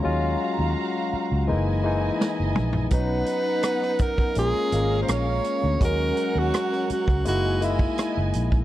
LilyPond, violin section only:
\new Staff \with { instrumentName = "Violin section" } { \time 4/4 \key ees \minor \tempo 4 = 83 <ges' f'' bes''>2 <fes' ees'' aes''>2 | <b dis' fis''>2 <des' bes' f''>2 | <des' bes' ges''>2 <fes' ees'' aes''>2 | }